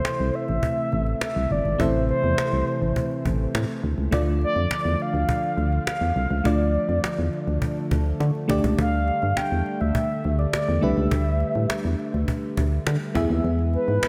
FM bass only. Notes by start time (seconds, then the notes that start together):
0.20 C2
0.49 A1
0.93 A1
1.36 C2
1.51 G1
1.65 G#1
1.80 A1
2.24 E2
2.53 C2
2.82 A1
3.26 A1
3.55 A2
3.84 D2
3.98 C#2
4.13 D2
4.56 F2
4.85 E2
5.14 D2
5.58 D2
6.01 E2
6.16 C2
6.31 C#2
6.45 D2
6.89 F2
7.19 E2
7.47 D2
7.91 D2
8.20 D3
8.49 D2
8.64 C#2
8.78 D2
9.23 G2
9.52 E2
9.81 D2
10.25 D2
10.69 E2
10.83 C2
10.97 C#2
11.12 D2
11.56 A2
11.85 E2
12.14 D2
12.58 D2
12.87 D3
13.16 E2
13.30 D#2
13.44 E2
13.88 G#2